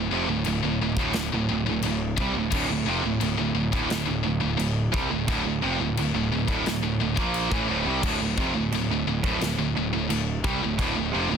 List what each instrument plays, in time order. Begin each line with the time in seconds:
Already playing: distorted electric guitar D2 A2
0.10 picked electric bass F1, distorted electric guitar F2 C3
0.27 picked electric bass D1, distorted electric guitar D2 A2
0.45 picked electric bass D1, distorted electric guitar D2 A2, china
0.63 picked electric bass D1, distorted electric guitar D2 A2
0.81 picked electric bass D1, distorted electric guitar D2 A2
0.96 picked electric bass D1, distorted electric guitar D2 A2, kick
1.13 picked electric bass D1, distorted electric guitar D2 A2, snare, china
1.32 picked electric bass D1, distorted electric guitar D2 A2
1.49 picked electric bass D1, distorted electric guitar D2 A2
1.66 picked electric bass D1, distorted electric guitar D2 A2
1.82 picked electric bass D1, distorted electric guitar D2 A2, china
2.17 picked electric bass C2, distorted electric guitar C3 G3, kick
2.33 picked electric bass D1, distorted electric guitar D2 A2
2.38 distorted electric guitar D2 A2
2.51 picked electric bass D1, distorted electric guitar D2 A2, kick, china, crash
2.68 picked electric bass D1, distorted electric guitar D2 A2
2.85 picked electric bass F1, distorted electric guitar F2 C3
3.02 picked electric bass D1, distorted electric guitar D2 A2
3.20 picked electric bass D1, distorted electric guitar D2 A2, china
3.38 picked electric bass D1, distorted electric guitar D2 A2
3.55 picked electric bass D1, distorted electric guitar D2 A2
3.72 picked electric bass D1, distorted electric guitar D2 A2, kick
3.89 picked electric bass D1, distorted electric guitar D2 A2, snare, china
4.05 picked electric bass D1, distorted electric guitar D2 A2
4.23 picked electric bass D1, distorted electric guitar D2 A2
4.40 picked electric bass D1, distorted electric guitar D2 A2
4.57 picked electric bass D1, distorted electric guitar D2 A2, china
4.92 picked electric bass C2, distorted electric guitar C3 G3, kick
5.11 picked electric bass D1, distorted electric guitar D2 A2
5.27 picked electric bass D1, distorted electric guitar D2 A2, kick, china
5.44 picked electric bass D1, distorted electric guitar D2 A2
5.62 picked electric bass F1, distorted electric guitar F2 C3
5.79 picked electric bass D1, distorted electric guitar D2 A2
5.97 picked electric bass D1, distorted electric guitar D2 A2, china
6.13 picked electric bass D1, distorted electric guitar D2 A2
6.31 picked electric bass D1, distorted electric guitar D2 A2
6.47 picked electric bass D1, distorted electric guitar D2 A2, kick
6.66 picked electric bass D1, distorted electric guitar D2 A2, snare, china
6.82 picked electric bass D1, distorted electric guitar D2 A2
7.00 picked electric bass D1, distorted electric guitar D2 A2
7.16 picked electric bass A#1, distorted electric guitar A#2 F3 A#3, kick
7.34 china
7.50 picked electric bass A1, distorted electric guitar A2 E3, kick
7.68 picked electric bass D1, distorted electric guitar D2 A2
7.85 picked electric bass C2, distorted electric guitar C3 G3
8.02 picked electric bass D1, distorted electric guitar D2 A2, kick, china, crash
8.20 picked electric bass D1, distorted electric guitar D2 A2
8.38 picked electric bass F1, distorted electric guitar F2 C3, kick
8.55 picked electric bass D1, distorted electric guitar D2 A2
8.72 picked electric bass D1, distorted electric guitar D2 A2, china
8.90 picked electric bass D1, distorted electric guitar D2 A2
9.07 picked electric bass D1, distorted electric guitar D2 A2
9.24 picked electric bass D1, distorted electric guitar D2 A2, kick
9.41 picked electric bass D1, distorted electric guitar D2 A2, snare, china
9.58 picked electric bass D1, distorted electric guitar D2 A2
9.76 picked electric bass D1, distorted electric guitar D2 A2
9.93 picked electric bass D1, distorted electric guitar D2 A2
10.10 picked electric bass D1, distorted electric guitar D2 A2, china
10.44 picked electric bass C2, distorted electric guitar C3 G3, kick
10.63 picked electric bass D1, distorted electric guitar D2 A2
10.78 picked electric bass D1, distorted electric guitar D2 A2, kick, china
10.97 picked electric bass D1, distorted electric guitar D2 A2
11.14 picked electric bass F1, distorted electric guitar F2 C3
11.31 picked electric bass D1, distorted electric guitar D2 A2